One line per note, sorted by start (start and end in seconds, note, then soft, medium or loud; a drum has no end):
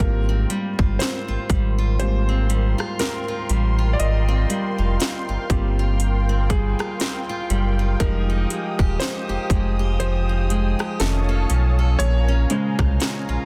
0.00 0.46 G#1 loud
0.00 1.98 G#2 medium
0.00 0.70 G3 medium
0.00 0.50 G#3 medium
0.00 0.28 A#3 medium
0.00 0.70 A#3 medium
0.00 0.70 C4 medium
0.00 0.11 E4 medium
0.00 0.70 F4 medium
0.00 1.03 A#4 medium
0.00 7.96 A#4 medium
0.00 10.96 F5 medium
0.00 10.96 G5 medium
0.00 7.96 C6 medium
0.00 kick loud
0.00 closed hi-hat medium
0.29 0.99 C4 medium
0.50 1.49 G3 medium
0.50 closed hi-hat medium
0.79 0.98 G1 medium
0.79 1.28 F4 medium
0.79 kick medium
0.99 2.28 C4 medium
0.99 1.98 C5 medium
0.99 snare loud
0.99 closed hi-hat medium
1.28 1.38 G#1 soft
1.28 1.78 F4 medium
1.49 2.75 G#1 medium
1.49 2.49 G3 medium
1.49 kick loud
1.49 closed hi-hat medium
1.78 2.78 F4 medium
1.99 4.00 G#2 medium
1.99 2.46 G3 soft
1.99 2.46 A#3 soft
1.99 2.46 C4 soft
1.99 2.47 F4 medium
1.99 3.03 C5 loud
1.99 closed hi-hat medium
2.29 2.99 C4 medium
2.49 3.49 G3 medium
2.49 closed hi-hat medium
2.78 3.28 F4 medium
2.78 cross-stick medium
2.99 4.28 C4 medium
2.99 3.97 A#4 medium
2.99 snare loud
2.99 closed hi-hat medium
3.28 3.78 F4 medium
3.49 3.96 A1 loud
3.49 4.49 G3 medium
3.49 closed hi-hat medium
3.79 4.78 F4 medium
3.93 4.00 D5 medium
3.99 4.46 G#1 loud
3.99 4.96 D#5 loud
3.99 closed hi-hat medium
4.28 4.99 C4 medium
4.50 5.50 G3 medium
4.50 closed hi-hat medium
4.78 4.98 F1 loud
4.78 5.28 F4 medium
5.00 6.29 C4 medium
5.00 snare loud
5.00 closed hi-hat medium
5.29 5.37 G1 medium
5.29 5.79 F4 medium
5.50 6.75 G1 loud
5.50 6.50 G3 medium
5.50 6.96 A#3 medium
5.50 6.96 C4 medium
5.50 6.97 F4 medium
5.50 6.96 G4 medium
5.50 kick loud
5.50 closed hi-hat medium
5.79 6.79 F4 medium
6.00 closed hi-hat medium
6.29 7.00 C4 medium
6.50 7.50 G3 medium
6.50 7.96 G#4 medium
6.50 kick loud
6.50 closed hi-hat medium
6.79 7.29 F4 medium
6.79 cross-stick medium
7.00 8.50 C4 medium
7.00 snare loud
7.00 closed hi-hat medium
7.29 7.79 F4 medium
7.50 7.96 F#1 medium
7.50 8.00 G3 medium
7.50 closed hi-hat medium
7.79 8.29 F4 medium
8.00 8.46 F1 loud
8.00 10.00 F3 medium
8.00 10.96 G3 medium
8.00 10.96 G#3 medium
8.00 10.97 D#4 medium
8.00 10.97 G4 medium
8.00 9.03 A#4 loud
8.00 11.96 D#6 medium
8.00 kick loud
8.00 closed hi-hat medium
8.30 9.00 D#4 medium
8.50 9.49 G#3 medium
8.50 closed hi-hat medium
8.79 8.98 D#1 medium
8.79 9.28 G4 medium
8.79 kick medium
9.00 10.28 D#4 medium
9.00 9.96 C5 loud
9.00 snare loud
9.00 closed hi-hat medium
9.29 9.37 F1 medium
9.29 9.78 G4 medium
9.50 10.75 F1 loud
9.50 10.49 G#3 medium
9.50 kick loud
9.50 closed hi-hat medium
9.79 10.78 G4 medium
10.00 11.00 F3 medium
10.00 10.96 C5 loud
10.00 closed hi-hat medium
10.29 11.12 D#4 medium
10.50 11.12 G#3 medium
10.50 closed hi-hat medium
10.79 11.12 G4 medium
10.79 cross-stick medium
11.00 11.46 F1 loud
11.00 11.96 D#3 medium
11.00 11.97 A3 medium
11.00 11.97 C#4 medium
11.00 12.03 A4 medium
11.00 11.99 C#5 medium
11.00 11.99 F5 medium
11.00 11.99 A5 medium
11.00 snare loud
11.00 closed hi-hat medium
11.29 11.78 A4 medium
11.50 11.96 B1 loud
11.50 12.28 C#4 medium
11.50 closed hi-hat medium
11.79 12.11 A4 medium
11.99 12.46 A#1 loud
11.99 13.45 A#2 medium
11.99 13.45 A#4 medium
11.99 12.95 C#5 loud
11.99 13.45 F5 medium
11.99 13.45 G#5 medium
11.99 13.45 A#5 medium
11.99 closed hi-hat medium
12.28 12.99 C#4 medium
12.50 13.20 C#3 medium
12.50 13.45 G#3 medium
12.50 13.20 G#3 medium
12.50 13.20 C5 medium
12.50 closed hi-hat medium
12.79 12.98 C2 medium
12.79 13.28 F4 medium
12.79 kick medium
12.79 cross-stick medium
13.00 13.45 C#4 medium
13.00 snare loud
13.00 closed hi-hat medium
13.29 13.37 A#1 soft
13.29 13.45 F4 medium